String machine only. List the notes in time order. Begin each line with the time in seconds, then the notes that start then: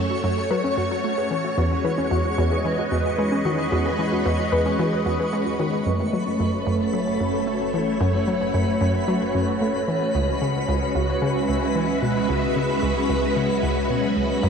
Already playing: A3 C#4 F#4 A4 C#5
1.58 E2
1.64 G#3
2.41 D#5
2.56 B4
5.86 A3
6.01 A4
6.19 C#4
6.78 F#4
6.88 C#5
10.15 G#3
10.98 B4
11.30 E5
14.44 A3